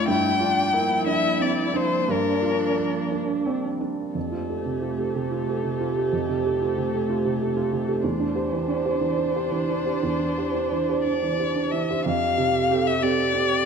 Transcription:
0.00 0.11 F2 medium
0.00 0.11 C4 soft
0.00 0.11 D4 medium
0.00 0.11 F4 soft
0.00 0.11 A4 medium
0.07 2.05 G2 medium
0.07 4.11 F3 medium
0.07 4.15 A#3 medium
0.07 0.39 E4 medium
0.07 4.11 D5 medium
0.07 1.05 G5 medium
0.39 0.74 D4 medium
0.39 0.94 F4 medium
0.72 2.08 E4 medium
0.72 1.27 A#4 medium
1.06 1.61 D4 soft
1.06 1.43 E5 medium
1.40 1.74 C4 soft
1.40 1.78 D5 medium
1.74 2.29 D4 soft
1.74 2.13 C5 medium
2.08 4.11 G2 medium
2.08 3.61 D4 medium
2.08 3.14 A#4 medium
2.43 2.98 F4 soft
2.77 3.33 A#4 soft
3.12 3.67 D4 soft
3.46 3.81 C4 soft
3.81 4.15 D4 soft
4.15 6.08 F2 soft
4.15 8.00 A3 medium
4.15 8.00 G4 soft
4.15 8.00 A4 soft
4.15 8.00 C5 soft
4.32 4.59 F4 soft
4.49 4.64 G4 soft
4.49 4.64 A4 soft
4.66 4.92 C3 soft
4.82 5.08 F4 soft
4.98 5.13 G4 soft
4.98 5.13 A4 soft
5.15 5.41 C3 soft
5.31 5.57 F4 soft
5.47 5.62 G4 soft
5.47 5.62 A4 soft
5.64 5.90 C3 soft
5.80 6.06 F4 soft
5.97 6.11 G4 soft
5.97 6.11 A4 soft
6.13 8.00 F2 soft
6.29 6.54 C3 soft
6.45 6.59 G4 soft
6.45 6.59 A4 soft
6.62 6.87 F4 soft
6.78 7.03 C3 soft
6.94 7.08 G4 soft
6.94 7.08 A4 soft
7.10 7.35 F4 soft
7.25 7.50 C3 soft
7.41 7.55 G4 soft
7.41 7.55 A4 soft
7.57 7.82 F4 soft
7.73 7.98 C3 soft
7.88 8.02 G4 soft
7.88 8.02 A4 soft
8.03 9.97 E2 soft
8.03 12.05 C4 medium
8.03 11.81 D4 medium
8.03 12.01 G4 medium
8.03 11.00 C5 medium
8.03 12.05 D5 medium
8.20 8.45 D4 soft
8.35 8.50 G4 soft
8.35 8.50 C5 soft
8.52 8.78 E3 soft
8.68 8.94 D4 soft
8.85 8.99 G4 soft
8.85 8.99 C5 soft
9.01 9.27 E3 soft
9.18 9.44 D4 soft
9.36 9.50 G4 soft
9.36 9.50 C5 soft
9.52 9.78 E3 soft
9.69 9.95 D4 soft
9.86 10.00 G4 soft
9.86 10.00 C5 soft
10.03 12.02 E2 soft
10.20 10.46 E3 soft
10.37 10.52 G4 soft
10.37 10.52 C5 soft
10.54 10.81 D4 soft
10.72 10.98 E3 soft
10.89 11.03 G4 soft
10.89 11.03 C5 soft
11.03 11.32 D4 soft
11.03 11.73 D5 medium
11.23 11.49 E3 soft
11.39 11.54 G4 soft
11.39 11.54 C5 soft
11.55 11.82 D4 soft
11.71 11.99 E3 soft
11.71 12.05 E5 medium
11.90 12.04 G4 soft
11.90 12.04 C5 soft
12.05 13.65 F2 medium
12.05 13.65 C4 medium
12.05 13.65 G4 medium
12.05 13.65 A4 medium
12.05 12.88 F5 medium
12.38 12.90 C3 soft
12.71 12.99 C4 soft
12.71 13.00 G4 soft
12.71 13.00 A4 medium
12.87 13.04 E5 medium
13.03 13.31 C4 soft
13.03 13.32 G4 soft
13.03 13.32 A4 medium
13.03 13.65 D5 medium
13.34 13.65 C4 soft

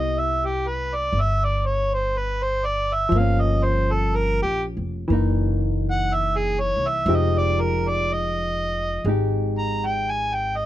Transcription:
0.00 1.08 C2 medium
0.00 3.09 G3 medium
0.00 3.13 B3 medium
0.00 3.15 E4 medium
0.00 0.20 D#5 medium
0.19 0.48 E5 medium
0.46 0.69 G4 medium
0.68 0.97 B4 medium
0.95 1.23 D5 medium
1.13 3.07 G1 medium
1.21 1.46 E5 medium
1.44 1.67 D5 medium
1.66 1.95 C#5 medium
1.94 2.19 C5 medium
2.18 2.44 B4 medium
2.43 2.67 C5 medium
2.65 2.95 D5 medium
2.93 3.20 E5 medium
3.09 4.39 G1 medium
3.09 5.07 F3 soft
3.15 5.10 A#3 soft
3.15 3.42 F5 medium
3.20 5.12 C#4 medium
3.41 3.65 D#5 medium
3.64 3.93 C5 medium
3.92 4.18 A4 medium
4.16 4.42 A#4 medium
4.42 4.74 A#1 soft
4.42 4.63 G4 medium
4.77 5.07 F1 medium
5.08 6.72 F#1 medium
5.08 7.06 E3 medium
5.08 7.08 A#3 medium
5.13 7.08 D#4 medium
5.91 6.15 F#5 medium
6.14 6.39 E5 medium
6.37 6.61 G#4 medium
6.60 6.89 C#5 medium
6.76 7.05 C2 medium
6.88 7.17 E5 medium
7.06 8.99 F1 medium
7.06 10.66 F3 soft
7.06 9.04 G#3 soft
7.06 9.06 D#4 medium
7.06 9.08 G4 medium
7.15 7.39 D#5 medium
7.38 7.62 D5 medium
7.61 7.90 A#4 medium
7.88 8.15 D5 medium
8.13 9.08 D#5 medium
9.05 10.66 G#1 medium
9.05 10.66 G#3 soft
9.05 10.66 D#4 soft
9.09 10.66 G4 soft
9.59 9.87 A#5 medium
9.86 10.12 G5 medium
10.11 10.36 G#5 medium
10.35 10.58 G5 medium
10.56 10.66 D#5 medium

